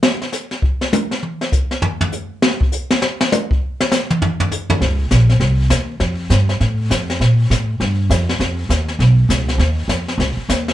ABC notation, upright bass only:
X:1
M:4/4
L:1/8
Q:"Swing" 1/4=201
K:Dblyd
V:1 name="Upright bass" clef=bass
z8 | z8 | z8 | z8 |
D,,2 B,,,2 C,,2 E,,2 | F,,2 G,,2 =A,,2 F,,2 | B,,2 =A,,2 G,,2 F,,2 | F,,2 E,,2 =B,,,2 ^C,,2 |
E,,2 F,,2 D,, z E,,2 |]